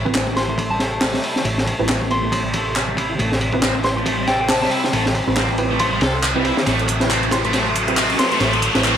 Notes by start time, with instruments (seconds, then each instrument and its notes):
Already playing: picked electric bass A1, string section C3 G3 A3, riser
0.05 synth stab C4 E4 G4 B4, kick
0.14 distorted electric guitar C4, snare, clap, ride
0.27 kick
0.36 synth stab C4 E4 G4 B4, synth bell C6, snare, ride
0.49 distorted electric guitar A3, synth bell C6
0.58 kick, ride
0.70 distorted electric guitar G3, synth bell A5
0.79 distorted electric guitar A4, snare, ride
1.01 snare, clap, open hi-hat
1.14 distorted electric guitar G3, snare
1.24 distorted electric guitar E4, ride
1.36 snare
1.45 picked electric bass A1, distorted electric guitar A3, kick, ride
1.58 snare
1.67 kick, ride
1.79 picked electric bass A1, synth stab C4 E4 G4 B4
1.88 distorted electric guitar C4, snare, clap, ride
2.02 kick
2.10 synth stab B3 C4 E4 G4, synth bell C6, ride
2.23 distorted electric guitar A3
2.32 kick, ride
2.45 distorted electric guitar G3
2.53 distorted electric guitar A4, kick, ride
2.76 snare, clap, ride
2.88 distorted electric guitar G3
2.97 distorted electric guitar E4, kick, ride
3.19 picked electric bass A1, distorted electric guitar A3, string section C4, kick, ride
3.32 snare
3.41 ride
3.53 synth stab C4 E4 G4 B4, kick
3.62 distorted electric guitar C4, snare, clap, ride
3.75 kick
3.84 synth stab C4 E4 G4 B4, synth bell C6, snare, ride
3.97 distorted electric guitar A3, synth bell C6
4.06 kick, ride
4.19 distorted electric guitar G3
4.27 distorted electric guitar A4, synth bell G5, snare, ride
4.41 synth bell G5
4.49 synth bell A5, snare, clap, open hi-hat
4.62 distorted electric guitar G3, synth bell A5, snare
4.71 distorted electric guitar E4, ride
4.84 snare
4.93 picked electric bass A1, distorted electric guitar A3, kick, ride
5.06 snare
5.15 kick, ride
5.27 picked electric bass A1, synth stab C4 E4 G4 B4
5.36 distorted electric guitar C4, snare, clap, ride
5.49 kick
5.58 synth stab C4 E4 G4 B4, ride
5.71 distorted electric guitar A3
5.79 synth bell C6, kick, ride
5.92 distorted electric guitar G3, synth bell C6
6.01 picked electric bass C2, distorted electric guitar A4, snare, ride
6.23 clap, ride
6.35 distorted electric guitar G3, synth stab C4 E4 G4 B4, kick
6.45 synth stab C4 E4 G4 C5, distorted electric guitar E4, ride
6.57 snare
6.66 picked electric bass A1, string section F#3 A3, distorted electric guitar A3, snare, closed hi-hat, ride
6.79 closed hi-hat
6.88 closed hi-hat, ride
7.00 synth stab C4 E4 G4 B4, snare, closed hi-hat
7.10 distorted electric guitar C4, clap, closed hi-hat, ride
7.23 closed hi-hat
7.31 synth stab C4 E4 G4 B4, synth bell C6, snare, closed hi-hat, ride
7.45 distorted electric guitar A3, synth bell C6, closed hi-hat
7.53 distorted electric guitar A3, snare, closed hi-hat, ride
7.75 closed hi-hat, ride
7.88 synth stab C4 E4 G4 B4, closed hi-hat
7.97 distorted electric guitar C4, clap, closed hi-hat, open hi-hat
8.10 closed hi-hat
8.19 synth stab C4 E4 G4 B4, synth bell C6, snare, closed hi-hat, ride
8.32 distorted electric guitar A3, synth bell C6, closed hi-hat
8.40 picked electric bass A1, distorted electric guitar A3, snare, closed hi-hat, ride
8.53 closed hi-hat
8.62 closed hi-hat, ride
8.75 picked electric bass A1, synth stab C4 E4 G4 B4, snare, closed hi-hat
8.84 distorted electric guitar C4, clap, closed hi-hat, ride